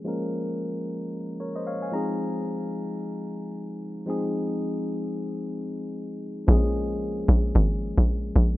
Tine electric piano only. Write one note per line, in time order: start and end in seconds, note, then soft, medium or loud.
0.04 1.10 F3 medium
0.04 1.10 G#3 medium
0.04 1.11 A#3 medium
0.04 1.11 C#4 medium
0.04 1.12 A#4 medium
1.40 1.55 A#4 medium
1.40 1.54 C#5 medium
1.56 1.66 C5 medium
1.56 1.66 D#5 medium
1.67 1.82 C#5 medium
1.67 1.81 F5 medium
1.82 2.08 F5 medium
1.82 2.07 G#5 medium
1.92 4.02 F3 medium
1.92 4.03 G#3 medium
1.92 4.03 C4 medium
1.92 4.04 D#4 medium
1.92 4.04 G#4 medium
1.92 2.18 A#5 medium
4.06 6.17 F3 medium
4.06 6.17 G#3 medium
4.06 6.18 C4 medium
4.06 6.18 D#4 medium
4.06 6.19 G#4 medium
6.47 8.57 F3 medium
6.47 8.57 G#3 medium
6.47 8.57 A#3 medium
6.47 6.57 C4 medium
6.47 8.57 G#4 medium
6.56 8.57 C#4 medium